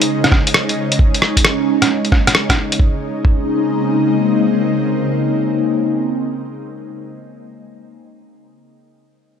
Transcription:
Already playing: ambient pad C#3 G#3 C#4 D#4
0.02 closed hi-hat
0.24 cross-stick, closed hi-hat
0.32 kick, cross-stick
0.47 closed hi-hat
0.54 cross-stick
0.69 closed hi-hat
0.92 closed hi-hat
0.99 kick
1.14 closed hi-hat
1.22 cross-stick
1.37 kick, closed hi-hat
1.45 cross-stick
1.82 cross-stick, closed hi-hat
2.05 closed hi-hat
2.12 kick, cross-stick
2.27 cross-stick, closed hi-hat
2.35 cross-stick
2.49 kick, cross-stick, closed hi-hat
2.72 closed hi-hat
2.79 ambient pad C#3 G#3 A#3 C4 D#4, kick
3.25 kick

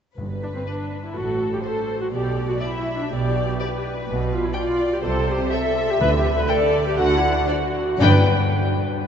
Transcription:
0.17 double bass section G1, cello section G2, timpani G2, violin section B4
0.43 viola section D4
0.55 viola section C4
0.67 viola section D4, violin section B4
1.04 viola section E4
1.16 double bass section A1, cello section A2, viola section F#4, violin section A4
1.53 viola section G4
1.63 viola section A4, violin section C5
2.01 viola section F#4
2.13 double bass section B1, cello section B2, viola section G4, violin section D5
2.49 viola section F#4
2.61 viola section E4, violin section D5 E5
2.99 viola section D4
3.11 double bass section B1, cello section B2, viola section G4, violin section D5
3.59 violin section B4 D5
4.08 double bass section B1, cello section B2
4.32 viola section F4
4.44 viola section E4
4.55 viola section F4, violin section D5 G5
4.93 viola section G4
5.03 double bass section C2, cello section C3, viola section A4, violin section C5
5.28 viola section G4
5.51 viola section A4, violin section E5
5.89 viola section G4
5.99 double bass section D2, cello section D3, timpani D3, viola section B4
6.17 viola section G4
6.33 viola section B4
6.48 viola section A4, violin section D5 G5
6.86 viola section G4
6.97 double bass section D2, cello section D3, viola section F#4, violin section F#5
7.15 viola section E4
7.31 viola section D4
7.47 viola section F#4, violin section C5 D5
7.99 double bass section G1, cello section G2, timpani G2, violin section D4 D5 G5, viola section B4

